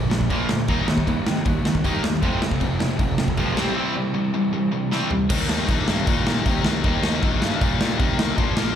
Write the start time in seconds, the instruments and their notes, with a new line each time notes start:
Already playing: overdriven electric guitar A#2 D3 F3 A#3 F4
0.10 picked electric bass A#1, distorted electric guitar A#2 F3, snare
0.21 kick
0.30 picked electric bass A#1, distorted electric guitar A#2 F3 A#3, kick, crash
0.49 picked electric bass D2, distorted electric guitar A#2 F3, snare
0.68 picked electric bass D#2, distorted electric guitar D#3 A#3 D#4, overdriven electric guitar G3, kick, crash
0.88 picked electric bass D#2, distorted electric guitar D#3 A#3, snare
0.98 kick
1.07 picked electric bass D#2, distorted electric guitar D#3 A#3, kick, crash
1.26 picked electric bass C3, distorted electric guitar D#3 A#3, snare
1.45 picked electric bass D#2, distorted electric guitar D#3 A#3, kick, crash
1.65 distorted electric guitar D#3 A#3, picked electric bass D#3, snare
1.75 kick
1.84 picked electric bass D#2, distorted electric guitar D#3 A#3 D#4, kick, crash
2.03 picked electric bass D#2, distorted electric guitar D#3 A#3, snare
2.22 picked electric bass F1, distorted electric guitar F2 C3 F3, overdriven electric guitar A3 C4 F4, kick, crash
2.42 distorted electric guitar F2 C3, snare
2.51 kick
2.60 picked electric bass F1, distorted electric guitar F2 C3, kick, crash
2.79 distorted electric guitar F2 C3, snare
2.99 picked electric bass F1, distorted electric guitar F2 C3, kick, crash
3.18 picked electric bass F1, distorted electric guitar F2 C3, snare
3.28 kick
3.37 picked electric bass B1, distorted electric guitar F2 C3 F3, kick, crash
3.56 picked electric bass C2, distorted electric guitar C3 G3 C4, overdriven electric guitar E3 E4, snare
3.75 distorted electric guitar C3 G3 C4
3.95 distorted electric guitar C3 G3
4.14 distorted electric guitar C3 G3
4.34 distorted electric guitar C3 G3
4.53 distorted electric guitar C3 G3
4.72 distorted electric guitar C3 G3
4.91 distorted electric guitar C3 G3 C4, snare
5.10 distorted electric guitar C3 G3, floor tom
5.29 picked electric bass D#2, distorted electric guitar D#3 A#3 D#4, overdriven electric guitar G3, kick, crash
5.48 distorted electric guitar D#3 A#3 D#4, snare
5.68 picked electric bass A#1, distorted electric guitar D#3 A#3 D#4, kick, crash
5.88 picked electric bass G2, distorted electric guitar D#3 A#3 D#4, snare
6.07 picked electric bass A#2, distorted electric guitar D#3 A#3 D#4, kick, crash
6.26 picked electric bass A#2, distorted electric guitar D#3 A#3 D#4, snare
6.45 picked electric bass C3, distorted electric guitar D#3 A#3 D#4, kick, crash
6.64 picked electric bass C2, distorted electric guitar D#3 A#3 D#4, snare
6.84 picked electric bass D#2, distorted electric guitar D#3 A#3 D#4, overdriven electric guitar G3, kick, crash
7.03 distorted electric guitar D#3 A#3 D#4, snare
7.23 picked electric bass A#1, distorted electric guitar D#3 A#3 D#4, kick, crash
7.41 picked electric bass G2, distorted electric guitar D#3 A#3 D#4, snare
7.60 picked electric bass A#2, distorted electric guitar D#3 A#3 D#4, kick, crash
7.79 picked electric bass A#2, distorted electric guitar D#3 A#3 D#4, snare
7.99 picked electric bass C3, distorted electric guitar D#3 A#3 D#4, kick, crash
8.18 picked electric bass C2, distorted electric guitar D#3 A#3 D#4, snare
8.37 picked electric bass A#1, distorted electric guitar A#2 F3 A#3, overdriven electric guitar D4, kick, crash
8.57 distorted electric guitar A#2 F3 A#3, snare